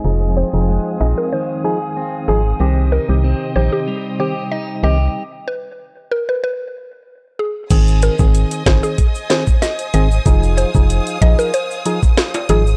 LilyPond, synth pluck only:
\new Staff \with { instrumentName = "Synth pluck" } { \time 4/4 \key aes \major \tempo 4 = 94 r8 c''16 r8. ees''16 bes'16 c''8. r8. aes'16 r16 | r8 bes'16 r8. c''16 g'16 r8 c''16 r16 ees''16 r16 ees''16 r16 | r8 ces''16 r8. bes'16 ces''16 ces''8. r8. aes'16 r16 | r8 bes'16 r8. c''16 aes'16 r8 c''16 r16 ees''16 r16 ees''16 r16 |
r8 c''16 r8. ees''16 bes'16 c''8. r8. aes'16 r16 | }